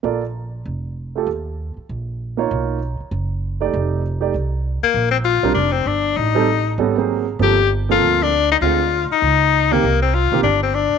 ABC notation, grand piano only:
X:1
M:4/4
L:1/8
Q:"Swing" 1/4=196
K:Bb
V:1 name="Grand piano"
[B,FAd] z6 [A,FGA] | z6 z [B,EF_d]- | [B,EF_d]2 z4 z [A,^DG=d]- | [A,^DG=d]2 z [A,EGd] z4 |
z3 [G,CDB] z4 | z [G,CEA] z2 [G,_C_DA] [_G,B,=C_A]2 z | [F,B,CA] z2 [F,B,CA]3 z2 | [D,_A,CF] z6 [E,B,CG] |
z3 [E,B,CG] z4 |]